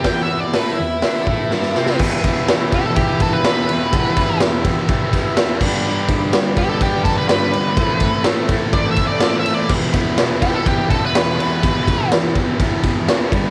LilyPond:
<<
  \new Staff \with { instrumentName = "Lead electric guitar" } { \time 4/4 \key e \minor \tempo 4 = 124 \tuplet 3/2 { g''8 e''8 d''8 b'8 e'4~ } e'2 | r4. g'16 a'16 g'8 a'16 b'16 b'4~ | b'4 r2. | r4. g'16 a'16 g'8 a'16 b'16 b'4~ |
b'4 r4 \tuplet 3/2 { d''8 e''8 d''8 d''8 e''8 d''8 } | r4. g'16 a'16 g'8 a'16 b'16 b'4~ | b'4 r2. | }
  \new Staff \with { instrumentName = "Transistor combo organ" } { \time 4/4 \key e \minor <g' b' e''>1 | <g' b' e''>1~ | <g' b' e''>2.~ <g' b' e''>8 <g' b' d''>8~ | <g' b' d''>1 |
<c' e' a'>1 | <e' g' b'>1~ | <e' g' b'>2.~ <e' g' b'>8 <d' g' b'>8 | }
  \new Staff \with { instrumentName = "Distorted electric guitar" } { \clef bass \time 4/4 \key e \minor <e, e>4 <a, a>8 e,8 <d d'>8 <a, a>8 <g, g>8 <c c'>8 | <e, b, e>8 <e, b, e>8 <e, b, e>8 <e, b, e>8 <e, b, e>8 <e, b, e>8 <e, b, e>8 <e, b, e>8 | <e, b, e>8 <e, b, e>8 <e, b, e>8 <e, b, e>8 <e, b, e>8 <e, b, e>8 <e, b, e>8 <g, d g>8 | <g, d g>8 <g, d g>8 <g, d g>8 <g, d g>8 <g, d g>8 <g, d g>8 <g, d g>8 <g, d g>8 |
<a, e a>8 <a, e a>8 <a, e a>8 <a, e a>8 <a, e a>8 <a, e a>8 <a, e a>8 <a, e a>8 | <e, b, e>8 <e, b, e>8 <e, b, e>8 <e, b, e>8 <e, b, e>8 <e, b, e>8 <e, b, e>8 <e, b, e>8 | <e, b, e>8 <e, b, e>8 <e, b, e>8 <e, b, e>8 <e, b, e>8 <e, b, e>8 <e, b, e>8 <g, d g>8 | }
  \new DrumStaff \with { instrumentName = "Drums" } \drummode { \time 4/4 <hho bd sn>4 <hho sn>4 <hho sn>8 bd8 sn16 sn16 sn16 sn16 | <cymc bd>8 <bd cymr>8 <cymr sn>8 <bd cymr>8 <bd cymr>8 <bd cymr>8 <cymr sn>8 cymr8 | <bd cymr>8 <bd cymr>8 <cymr sn>8 <bd cymr>8 <bd cymr>8 <bd cymr>8 <cymr sn>8 <cymc bd>8 | r8 <bd cymr>8 <cymr sn>8 <bd cymr>8 <bd cymr>8 <bd cymr>8 <cymr sn>8 cymr8 |
<bd cymr>8 <bd cymr>8 <cymr sn>8 <bd cymr>8 <bd cymr>8 <bd cymr>8 <cymr sn>8 cymr8 | <cymc bd>8 <bd cymr>8 <cymr sn>8 <bd cymr>8 <bd cymr>8 <bd cymr>8 <cymr sn>8 cymr8 | <bd cymr>8 <bd cymr>8 <cymr sn>8 <bd cymr>8 <bd cymr>8 <bd cymr>8 <cymr sn>8 <bd cymr>8 | }
>>